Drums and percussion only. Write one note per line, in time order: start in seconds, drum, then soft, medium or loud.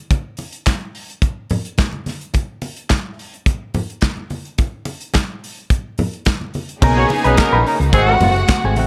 0.11 kick medium
0.11 closed hi-hat medium
0.11 muted conga medium
0.37 open hi-hat medium
0.37 muted conga medium
0.52 closed hi-hat medium
0.66 kick loud
0.66 snare loud
0.66 clap medium
0.66 closed hi-hat medium
0.66 high conga medium
0.95 open hi-hat medium
1.10 closed hi-hat soft
1.22 kick loud
1.22 closed hi-hat medium
1.22 muted conga soft
1.50 open hi-hat medium
1.50 muted conga soft
1.50 low conga medium
1.65 closed hi-hat soft
1.78 kick loud
1.78 snare medium
1.78 clap medium
1.78 closed hi-hat medium
1.78 high conga medium
1.93 high conga soft
2.06 snare soft
2.06 open hi-hat medium
2.06 high conga medium
2.21 closed hi-hat soft
2.34 kick medium
2.34 closed hi-hat medium
2.34 muted conga medium
2.62 open hi-hat medium
2.62 muted conga medium
2.76 closed hi-hat soft
2.90 kick medium
2.90 snare loud
2.90 clap medium
2.90 closed hi-hat medium
2.90 high conga medium
3.19 open hi-hat medium
3.34 closed hi-hat soft
3.46 kick loud
3.46 closed hi-hat medium
3.46 muted conga soft
3.74 open hi-hat medium
3.74 muted conga soft
3.74 low conga medium
3.90 closed hi-hat soft
4.01 kick loud
4.01 snare loud
4.01 clap medium
4.01 closed hi-hat medium
4.01 high conga medium
4.17 high conga soft
4.30 open hi-hat medium
4.30 high conga medium
4.45 closed hi-hat soft
4.58 kick medium
4.58 closed hi-hat medium
4.58 muted conga medium
4.85 open hi-hat medium
4.85 muted conga medium
5.01 closed hi-hat medium
5.14 kick loud
5.14 snare loud
5.14 clap medium
5.14 closed hi-hat medium
5.14 high conga medium
5.44 open hi-hat medium
5.58 closed hi-hat soft
5.70 kick loud
5.70 closed hi-hat medium
5.70 muted conga medium
5.98 open hi-hat medium
5.98 muted conga soft
5.98 low conga medium
6.13 closed hi-hat soft
6.25 kick loud
6.25 snare loud
6.25 clap medium
6.25 closed hi-hat medium
6.25 high conga medium
6.41 high conga medium
6.54 open hi-hat medium
6.54 high conga medium
6.69 closed hi-hat soft
6.82 kick loud
6.82 crash medium
6.82 muted conga medium
7.09 open hi-hat medium
7.09 muted conga medium
7.24 closed hi-hat medium
7.37 kick loud
7.37 snare loud
7.37 clap medium
7.37 closed hi-hat medium
7.37 high conga medium
7.67 open hi-hat medium
7.81 closed hi-hat soft
7.93 kick loud
7.93 closed hi-hat medium
7.93 muted conga medium
8.20 open hi-hat medium
8.20 muted conga soft
8.20 low conga medium
8.36 closed hi-hat medium
8.48 kick loud
8.48 snare loud
8.48 clap medium
8.48 closed hi-hat medium
8.48 high conga medium
8.76 open hi-hat medium
8.76 high conga medium